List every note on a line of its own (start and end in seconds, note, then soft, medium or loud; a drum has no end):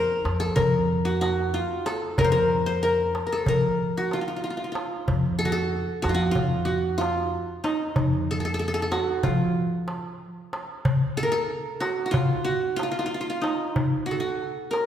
0.00 0.46 A#4 medium
0.00 0.82 C5 medium
0.25 0.49 F2 medium
0.25 darbuka tek medium
0.40 0.62 A4 medium
0.56 1.57 F2 medium
0.56 1.69 A#4 medium
0.56 darbuka dum loud
1.05 1.21 F#4 medium
1.21 1.60 F#4 medium
1.21 darbuka tek medium
1.54 2.88 F4 medium
1.86 2.25 A4 medium
1.86 darbuka tek medium
2.18 3.18 F2 medium
2.18 2.31 A#4 medium
2.18 darbuka dum loud
2.24 2.66 C5 medium
2.32 2.82 A#4 medium
2.66 3.72 C5 medium
2.66 darbuka ka soft
2.83 3.26 A#4 medium
2.83 darbuka ka soft
3.15 darbuka tek medium
3.27 3.38 A#4 soft
3.32 3.54 A4 medium
3.46 4.46 F3 medium
3.46 4.62 A#4 medium
3.46 darbuka dum medium
3.97 4.19 F#4 medium
4.11 4.21 F4 medium
4.11 darbuka tek soft
4.21 4.27 F4 soft
4.28 4.36 F4 soft
4.36 4.43 F4 soft
4.44 4.50 F4 medium
4.50 4.57 F4 soft
4.57 4.64 F4 soft
4.64 4.71 F4 soft
4.72 5.51 F4 soft
4.72 darbuka tek medium
5.08 5.83 F2 medium
5.08 darbuka dum loud
5.39 5.52 A4 medium
5.45 6.02 F#4 medium
5.52 6.70 A4 medium
5.52 darbuka ka soft
5.73 darbuka ka soft
6.02 6.29 F2 medium
6.02 6.14 F#4 medium
6.02 darbuka tek medium
6.09 6.21 F4 medium
6.14 6.37 F#4 medium
6.31 6.71 F4 medium
6.35 7.36 F2 medium
6.35 darbuka dum medium
6.65 7.04 F#4 medium
6.98 8.32 F4 medium
6.98 darbuka tek medium
7.64 9.08 D#4 medium
7.64 darbuka tek medium
7.96 8.97 F2 medium
7.96 darbuka dum loud
8.13 darbuka ka soft
8.31 8.40 A4 medium
8.40 8.45 A4 medium
8.44 8.54 A4 medium
8.44 darbuka ka soft
8.54 8.59 A4 medium
8.59 8.67 A4 medium
8.59 darbuka ka soft
8.68 8.74 A4 medium
8.74 8.82 A4 medium
8.82 10.00 A4 medium
8.92 9.29 F#4 medium
8.92 darbuka tek medium
9.23 10.25 F3 medium
9.23 10.58 F4 medium
9.23 darbuka dum medium
9.88 darbuka tek medium
10.53 darbuka tek medium
10.85 darbuka dum loud
11.17 11.29 A4 medium
11.23 11.38 A#4 medium
11.32 12.49 A4 medium
11.32 darbuka ka soft
11.50 darbuka ka soft
11.80 12.05 F#4 medium
11.80 darbuka tek medium
12.06 12.17 F#4 medium
12.11 12.51 F4 medium
12.11 darbuka dum loud
12.45 12.82 F#4 medium
12.76 12.83 F4 medium
12.76 darbuka tek medium
12.83 12.91 F4 medium
12.91 12.98 F4 medium
12.99 13.05 F4 medium
13.06 13.14 F4 medium
13.14 13.20 F4 medium
13.21 13.29 F4 medium
13.30 14.12 F4 medium
13.41 14.86 D#4 medium
13.41 darbuka tek medium
13.76 darbuka dum loud
14.06 14.20 F#4 medium
14.11 14.77 A4 medium
14.20 14.86 F#4 medium
14.24 darbuka ka soft
14.41 darbuka ka soft
14.71 14.86 A#4 medium
14.71 darbuka tek medium